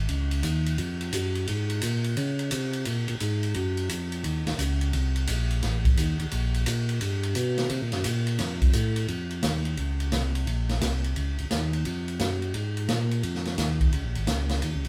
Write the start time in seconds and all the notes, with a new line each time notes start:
0.09 C#2, ride
0.31 ride
0.43 D#2, hi-hat pedal, ride
0.66 ride
0.78 F2, ride
1.01 ride
1.12 F#2, hi-hat pedal, ride
1.35 ride
1.47 G#2, ride
1.70 ride
1.81 A#2, hi-hat pedal, ride
2.04 ride
2.17 C#3, ride
2.39 ride
2.51 C3, hi-hat pedal, ride
2.73 ride
2.85 A#2, ride
3.08 A#2, ride
3.20 G#2, hi-hat pedal, ride
3.43 ride
3.54 F#2, ride
3.77 ride
3.89 F2, hi-hat pedal, ride
4.12 ride
4.24 D#2, ride
4.46 D#2, snare, ride
4.58 C#2, hi-hat pedal, ride
4.81 ride
4.93 C2, ride
5.16 ride
5.27 A#1, hi-hat pedal, ride
5.50 ride
5.62 A1, snare, ride
5.85 kick, ride
5.97 D#2, hi-hat pedal, ride
6.19 D#2, ride
6.31 A#1, ride
6.54 ride
6.66 A#2, hi-hat pedal, ride
6.89 ride
7.01 G2, ride
7.23 ride
7.35 B2, hi-hat pedal, ride
7.58 snare, ride
7.69 C3, ride
7.82 A#2
7.92 F#2, snare, ride
8.04 A#2, hi-hat pedal, ride
8.27 ride
8.38 F2, snare, ride
8.62 kick, ride
8.73 A2, hi-hat pedal, ride
8.96 ride
9.08 F2, ride
9.30 ride
9.43 D#2, snare, hi-hat pedal, ride
9.65 ride
9.77 C#2, ride
10.00 ride
10.12 C2, snare, hi-hat pedal, ride
10.35 ride
10.47 A#1, ride
10.69 snare, ride
10.81 C2, snare, hi-hat pedal, ride
11.04 ride
11.16 C#2, ride
11.38 C#2, ride
11.51 D#2, snare, hi-hat pedal, ride
11.73 ride
11.85 F2, ride
12.08 ride
12.19 F#2, snare, hi-hat pedal, ride
12.42 ride
12.54 G#2, ride
12.77 ride
12.88 A#2, snare, hi-hat pedal, ride
13.11 ride
13.23 F2, ride
13.35 snare
13.45 snare, ride
13.58 D#2, snare, hi-hat pedal, ride
13.80 kick, ride
13.92 C#2, ride
14.05 A#1
14.15 G#1, ride
14.27 C#2, snare, hi-hat pedal, ride
14.49 snare, ride
14.62 D#2, ride
14.74 C#2
14.84 ride